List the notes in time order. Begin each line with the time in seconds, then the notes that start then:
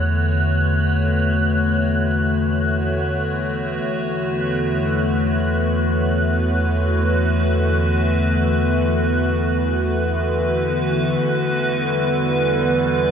Already playing: E2 D3 E3 A3 B3 F#4 C#5 F#6
3.84 E2 D3
5.17 B4
11.20 E2 F#6
11.51 G3